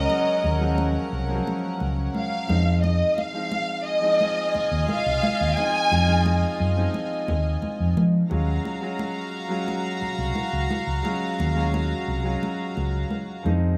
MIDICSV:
0, 0, Header, 1, 7, 480
1, 0, Start_track
1, 0, Tempo, 684932
1, 62, Time_signature, 4, 2, 24, 8
1, 9654, End_track
2, 0, Start_track
2, 0, Title_t, "Violin section"
2, 0, Program_c, 0, 48
2, 0, Note_on_c, 0, 75, 82
2, 547, Note_off_c, 0, 75, 0
2, 1515, Note_on_c, 0, 77, 76
2, 1960, Note_off_c, 0, 77, 0
2, 1986, Note_on_c, 0, 75, 71
2, 2223, Note_off_c, 0, 75, 0
2, 2226, Note_on_c, 0, 77, 78
2, 2703, Note_off_c, 0, 77, 0
2, 2707, Note_on_c, 0, 75, 87
2, 3396, Note_off_c, 0, 75, 0
2, 3436, Note_on_c, 0, 77, 90
2, 3908, Note_off_c, 0, 77, 0
2, 3912, Note_on_c, 0, 80, 97
2, 4627, Note_off_c, 0, 80, 0
2, 9654, End_track
3, 0, Start_track
3, 0, Title_t, "String section"
3, 0, Program_c, 1, 48
3, 0, Note_on_c, 1, 61, 68
3, 0, Note_on_c, 1, 70, 70
3, 0, Note_on_c, 1, 78, 73
3, 1715, Note_off_c, 1, 70, 0
3, 1715, Note_off_c, 1, 78, 0
3, 1716, Note_off_c, 1, 61, 0
3, 2699, Note_on_c, 1, 65, 70
3, 2700, Note_on_c, 1, 75, 69
3, 2701, Note_on_c, 1, 80, 73
3, 5553, Note_off_c, 1, 65, 0
3, 5553, Note_off_c, 1, 75, 0
3, 5553, Note_off_c, 1, 80, 0
3, 5818, Note_on_c, 1, 66, 69
3, 5818, Note_on_c, 1, 82, 78
3, 5819, Note_on_c, 1, 77, 66
3, 9391, Note_off_c, 1, 66, 0
3, 9391, Note_off_c, 1, 77, 0
3, 9391, Note_off_c, 1, 82, 0
3, 9654, End_track
4, 0, Start_track
4, 0, Title_t, "Grand piano"
4, 0, Program_c, 2, 0
4, 0, Control_c, 2, 64, 127
4, 0, Note_on_c, 2, 54, 61
4, 0, Note_on_c, 2, 56, 57
4, 0, Note_on_c, 2, 68, 70
4, 53, Note_off_c, 2, 54, 0
4, 53, Note_on_c, 2, 54, 64
4, 59, Note_off_c, 2, 56, 0
4, 59, Note_on_c, 2, 56, 55
4, 68, Note_on_c, 2, 61, 57
4, 75, Note_off_c, 2, 68, 0
4, 75, Note_on_c, 2, 68, 66
4, 332, Note_off_c, 2, 54, 0
4, 335, Note_off_c, 2, 56, 0
4, 339, Note_off_c, 2, 61, 0
4, 343, Note_off_c, 2, 68, 0
4, 414, Note_on_c, 2, 54, 71
4, 422, Note_on_c, 2, 56, 68
4, 427, Note_on_c, 2, 61, 69
4, 435, Note_on_c, 2, 53, 75
4, 784, Note_off_c, 2, 54, 0
4, 788, Note_off_c, 2, 56, 0
4, 790, Note_off_c, 2, 61, 0
4, 794, Note_off_c, 2, 53, 0
4, 894, Note_on_c, 2, 53, 62
4, 901, Note_on_c, 2, 56, 69
4, 905, Note_off_c, 2, 53, 0
4, 906, Note_on_c, 2, 61, 69
4, 915, Note_on_c, 2, 53, 86
4, 939, Note_on_c, 2, 54, 75
4, 1633, Note_off_c, 2, 56, 0
4, 1636, Note_off_c, 2, 61, 0
4, 1641, Note_off_c, 2, 53, 0
4, 1653, Note_off_c, 2, 54, 0
4, 1729, Note_on_c, 2, 53, 62
4, 1741, Note_on_c, 2, 56, 57
4, 1747, Note_on_c, 2, 60, 60
4, 1749, Control_c, 2, 64, 0
4, 1751, Note_on_c, 2, 63, 71
4, 1873, Control_c, 2, 64, 127
4, 2215, Note_off_c, 2, 53, 0
4, 2221, Note_off_c, 2, 56, 0
4, 2224, Note_off_c, 2, 60, 0
4, 2226, Note_off_c, 2, 63, 0
4, 2333, Note_on_c, 2, 53, 64
4, 2338, Note_on_c, 2, 56, 57
4, 2347, Note_on_c, 2, 60, 58
4, 2352, Note_on_c, 2, 63, 69
4, 2703, Note_off_c, 2, 53, 0
4, 2706, Note_off_c, 2, 56, 0
4, 2710, Note_off_c, 2, 60, 0
4, 2713, Note_off_c, 2, 63, 0
4, 2807, Note_on_c, 2, 53, 63
4, 2815, Note_on_c, 2, 56, 62
4, 2824, Note_on_c, 2, 60, 58
4, 2828, Note_on_c, 2, 63, 69
4, 3546, Note_off_c, 2, 53, 0
4, 3551, Note_off_c, 2, 56, 0
4, 3555, Note_off_c, 2, 60, 0
4, 3557, Note_off_c, 2, 63, 0
4, 3900, Note_on_c, 2, 53, 59
4, 3907, Note_on_c, 2, 56, 54
4, 3912, Note_on_c, 2, 60, 59
4, 3921, Note_on_c, 2, 63, 68
4, 4175, Note_off_c, 2, 53, 0
4, 4179, Note_off_c, 2, 56, 0
4, 4181, Note_off_c, 2, 60, 0
4, 4186, Note_off_c, 2, 63, 0
4, 4256, Note_on_c, 2, 53, 62
4, 4261, Note_on_c, 2, 56, 58
4, 4269, Note_on_c, 2, 60, 54
4, 4276, Note_on_c, 2, 63, 65
4, 4625, Note_off_c, 2, 53, 0
4, 4627, Note_off_c, 2, 56, 0
4, 4631, Note_off_c, 2, 60, 0
4, 4635, Note_off_c, 2, 63, 0
4, 4732, Note_on_c, 2, 53, 72
4, 4740, Note_on_c, 2, 56, 64
4, 4746, Note_on_c, 2, 60, 69
4, 4755, Note_on_c, 2, 63, 81
4, 5469, Note_off_c, 2, 53, 0
4, 5473, Note_off_c, 2, 56, 0
4, 5476, Note_off_c, 2, 60, 0
4, 5481, Note_off_c, 2, 63, 0
4, 5815, Note_on_c, 2, 54, 71
4, 5821, Note_on_c, 2, 56, 66
4, 5830, Control_c, 2, 64, 0
4, 5830, Note_on_c, 2, 61, 68
4, 5834, Note_on_c, 2, 65, 77
4, 5935, Control_c, 2, 64, 127
4, 6093, Note_off_c, 2, 54, 0
4, 6096, Note_off_c, 2, 56, 0
4, 6100, Note_off_c, 2, 61, 0
4, 6102, Note_off_c, 2, 65, 0
4, 6175, Note_on_c, 2, 54, 77
4, 6183, Note_on_c, 2, 56, 70
4, 6187, Note_on_c, 2, 61, 68
4, 6195, Note_on_c, 2, 65, 83
4, 6545, Note_off_c, 2, 54, 0
4, 6548, Note_off_c, 2, 56, 0
4, 6550, Note_off_c, 2, 61, 0
4, 6554, Note_off_c, 2, 65, 0
4, 6648, Note_on_c, 2, 54, 77
4, 6656, Note_on_c, 2, 56, 70
4, 6663, Note_on_c, 2, 61, 69
4, 6670, Note_on_c, 2, 65, 81
4, 7387, Note_off_c, 2, 54, 0
4, 7392, Note_off_c, 2, 56, 0
4, 7395, Note_off_c, 2, 61, 0
4, 7398, Note_off_c, 2, 65, 0
4, 7729, Note_on_c, 2, 54, 80
4, 7738, Note_on_c, 2, 56, 66
4, 7745, Note_on_c, 2, 61, 67
4, 7752, Note_on_c, 2, 65, 81
4, 8010, Note_off_c, 2, 54, 0
4, 8014, Note_off_c, 2, 56, 0
4, 8018, Note_off_c, 2, 61, 0
4, 8021, Note_off_c, 2, 65, 0
4, 8089, Note_on_c, 2, 54, 74
4, 8097, Note_on_c, 2, 56, 69
4, 8105, Note_on_c, 2, 61, 69
4, 8112, Note_on_c, 2, 65, 86
4, 8461, Note_off_c, 2, 54, 0
4, 8465, Note_off_c, 2, 56, 0
4, 8470, Note_off_c, 2, 61, 0
4, 8473, Note_off_c, 2, 65, 0
4, 8573, Note_on_c, 2, 54, 79
4, 8581, Note_on_c, 2, 56, 68
4, 8586, Note_on_c, 2, 61, 71
4, 8594, Note_on_c, 2, 65, 84
4, 9309, Note_off_c, 2, 54, 0
4, 9313, Note_off_c, 2, 56, 0
4, 9316, Note_off_c, 2, 61, 0
4, 9320, Note_off_c, 2, 65, 0
4, 9412, Note_on_c, 2, 53, 78
4, 9419, Note_on_c, 2, 56, 72
4, 9426, Note_on_c, 2, 60, 72
4, 9431, Control_c, 2, 64, 0
4, 9435, Note_on_c, 2, 63, 88
4, 9563, Control_c, 2, 64, 127
4, 9654, Note_off_c, 2, 53, 0
4, 9654, Note_off_c, 2, 56, 0
4, 9654, Note_off_c, 2, 60, 0
4, 9654, Note_off_c, 2, 63, 0
4, 9654, End_track
5, 0, Start_track
5, 0, Title_t, "Fingered electric bass"
5, 0, Program_c, 3, 33
5, 309, Note_on_c, 3, 39, 75
5, 671, Note_off_c, 3, 39, 0
5, 789, Note_on_c, 3, 36, 76
5, 969, Note_off_c, 3, 36, 0
5, 1269, Note_on_c, 3, 37, 77
5, 1448, Note_off_c, 3, 37, 0
5, 1748, Note_on_c, 3, 41, 84
5, 2110, Note_off_c, 3, 41, 0
5, 3304, Note_on_c, 3, 39, 73
5, 3394, Note_off_c, 3, 39, 0
5, 3548, Note_on_c, 3, 36, 77
5, 3637, Note_off_c, 3, 36, 0
5, 3791, Note_on_c, 3, 39, 79
5, 3878, Note_off_c, 3, 39, 0
5, 4145, Note_on_c, 3, 41, 86
5, 4509, Note_off_c, 3, 41, 0
5, 4626, Note_on_c, 3, 42, 75
5, 4807, Note_off_c, 3, 42, 0
5, 5111, Note_on_c, 3, 39, 69
5, 5289, Note_off_c, 3, 39, 0
5, 5468, Note_on_c, 3, 41, 70
5, 5556, Note_off_c, 3, 41, 0
5, 5586, Note_on_c, 3, 53, 85
5, 5766, Note_off_c, 3, 53, 0
5, 5825, Note_on_c, 3, 39, 78
5, 6006, Note_off_c, 3, 39, 0
5, 7137, Note_on_c, 3, 36, 74
5, 7230, Note_off_c, 3, 36, 0
5, 7379, Note_on_c, 3, 37, 75
5, 7471, Note_off_c, 3, 37, 0
5, 7619, Note_on_c, 3, 37, 72
5, 7711, Note_off_c, 3, 37, 0
5, 7985, Note_on_c, 3, 39, 76
5, 8348, Note_off_c, 3, 39, 0
5, 8466, Note_on_c, 3, 36, 82
5, 8646, Note_off_c, 3, 36, 0
5, 8951, Note_on_c, 3, 37, 77
5, 9130, Note_off_c, 3, 37, 0
5, 9426, Note_on_c, 3, 41, 86
5, 9654, Note_off_c, 3, 41, 0
5, 9654, End_track
6, 0, Start_track
6, 0, Title_t, "Muted fingered electric bass strokes"
6, 3189, Note_on_c, 9, 29, 37
6, 3259, Note_off_c, 9, 29, 0
6, 5345, Note_on_c, 9, 29, 37
6, 5416, Note_off_c, 9, 29, 0
6, 7023, Note_on_c, 9, 29, 36
6, 7093, Note_off_c, 9, 29, 0
6, 7264, Note_on_c, 9, 29, 38
6, 7334, Note_off_c, 9, 29, 0
6, 9654, End_track
7, 0, Start_track
7, 0, Title_t, "Drums"
7, 67, Note_on_c, 9, 62, 45
7, 138, Note_off_c, 9, 62, 0
7, 309, Note_on_c, 9, 62, 42
7, 379, Note_off_c, 9, 62, 0
7, 546, Note_on_c, 9, 63, 51
7, 616, Note_off_c, 9, 63, 0
7, 1032, Note_on_c, 9, 62, 45
7, 1102, Note_off_c, 9, 62, 0
7, 1263, Note_on_c, 9, 62, 28
7, 1333, Note_off_c, 9, 62, 0
7, 1504, Note_on_c, 9, 63, 60
7, 1574, Note_off_c, 9, 63, 0
7, 1746, Note_on_c, 9, 63, 73
7, 1816, Note_off_c, 9, 63, 0
7, 1988, Note_on_c, 9, 62, 47
7, 2058, Note_off_c, 9, 62, 0
7, 2228, Note_on_c, 9, 62, 41
7, 2298, Note_off_c, 9, 62, 0
7, 2464, Note_on_c, 9, 63, 49
7, 2534, Note_off_c, 9, 63, 0
7, 2949, Note_on_c, 9, 62, 41
7, 3019, Note_off_c, 9, 62, 0
7, 3186, Note_on_c, 9, 62, 29
7, 3256, Note_off_c, 9, 62, 0
7, 3423, Note_on_c, 9, 63, 60
7, 3493, Note_off_c, 9, 63, 0
7, 3667, Note_on_c, 9, 63, 69
7, 3737, Note_off_c, 9, 63, 0
7, 3905, Note_on_c, 9, 62, 44
7, 3975, Note_off_c, 9, 62, 0
7, 4150, Note_on_c, 9, 62, 44
7, 4220, Note_off_c, 9, 62, 0
7, 4385, Note_on_c, 9, 63, 53
7, 4455, Note_off_c, 9, 63, 0
7, 4865, Note_on_c, 9, 62, 43
7, 4936, Note_off_c, 9, 62, 0
7, 5104, Note_on_c, 9, 62, 29
7, 5104, Note_on_c, 9, 64, 61
7, 5174, Note_off_c, 9, 62, 0
7, 5174, Note_off_c, 9, 64, 0
7, 5341, Note_on_c, 9, 63, 59
7, 5412, Note_off_c, 9, 63, 0
7, 5586, Note_on_c, 9, 63, 72
7, 5656, Note_off_c, 9, 63, 0
7, 5822, Note_on_c, 9, 62, 42
7, 5892, Note_off_c, 9, 62, 0
7, 6064, Note_on_c, 9, 62, 43
7, 6134, Note_off_c, 9, 62, 0
7, 6302, Note_on_c, 9, 63, 53
7, 6372, Note_off_c, 9, 63, 0
7, 6783, Note_on_c, 9, 62, 44
7, 6853, Note_off_c, 9, 62, 0
7, 7017, Note_on_c, 9, 62, 28
7, 7087, Note_off_c, 9, 62, 0
7, 7255, Note_on_c, 9, 63, 62
7, 7325, Note_off_c, 9, 63, 0
7, 7502, Note_on_c, 9, 63, 70
7, 7573, Note_off_c, 9, 63, 0
7, 7743, Note_on_c, 9, 62, 46
7, 7813, Note_off_c, 9, 62, 0
7, 7988, Note_on_c, 9, 62, 42
7, 8058, Note_off_c, 9, 62, 0
7, 8227, Note_on_c, 9, 63, 54
7, 8297, Note_off_c, 9, 63, 0
7, 8710, Note_on_c, 9, 62, 43
7, 8780, Note_off_c, 9, 62, 0
7, 8949, Note_on_c, 9, 62, 32
7, 9019, Note_off_c, 9, 62, 0
7, 9184, Note_on_c, 9, 63, 59
7, 9254, Note_off_c, 9, 63, 0
7, 9431, Note_on_c, 9, 63, 70
7, 9501, Note_off_c, 9, 63, 0
7, 9654, End_track
0, 0, End_of_file